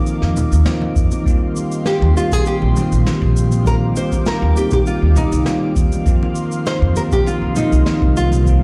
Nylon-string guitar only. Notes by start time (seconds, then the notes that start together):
Already playing: A#4
1.87 G4
2.17 F4
2.33 G#4
2.47 G4
3.67 A#4
3.97 C5
4.27 A#4
4.57 G4
4.73 G4
4.87 F4
5.17 D#4
6.67 C5
6.97 A#4
7.13 G4
7.27 F4
7.57 D#4
8.17 F4